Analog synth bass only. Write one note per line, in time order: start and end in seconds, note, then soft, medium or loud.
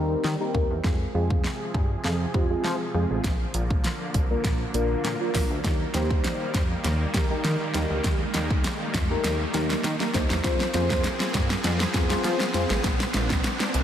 0.00 0.16 D#2 medium
0.24 0.36 D#3 loud
0.55 0.66 D#2 medium
0.70 0.80 E2 medium
0.84 1.06 F2 loud
1.14 1.47 F2 medium
1.74 1.96 G2 medium
2.04 2.26 F2 medium
2.34 2.56 F2 medium
2.64 2.76 F3 loud
2.94 3.06 F2 medium
3.10 3.20 A1 medium
3.24 3.46 A#1 loud
3.54 3.87 A#1 loud
4.14 4.36 C2 medium
4.44 4.66 A#1 loud
4.74 4.96 A#1 medium
5.04 5.16 A#2 loud
5.35 5.46 A#1 medium
5.50 5.60 D2 medium
5.64 5.86 D#2 loud
5.94 6.27 D#2 loud
6.54 6.76 F2 loud
6.84 7.06 D#2 loud
7.14 7.36 D#2 medium
7.45 7.56 D#3 loud
7.74 7.86 D#2 loud
7.90 8.00 D2 medium
8.04 8.26 D#2 loud
8.34 8.67 D#2 loud
8.94 9.16 F2 medium
9.24 9.46 D#2 loud
9.54 9.76 D#2 medium
9.84 9.96 D#3 loud
10.15 10.26 D#2 medium
10.30 10.40 E2 medium
10.44 10.66 F2 loud
10.74 11.07 F2 loud
11.34 11.56 G2 medium
11.64 11.86 F2 loud
11.94 12.16 F2 medium
12.24 12.36 F3 loud
12.54 12.66 F2 medium
12.70 12.80 A1 medium
12.84 13.06 A#1 loud
13.14 13.47 A#1 loud
13.74 13.84 C2 loud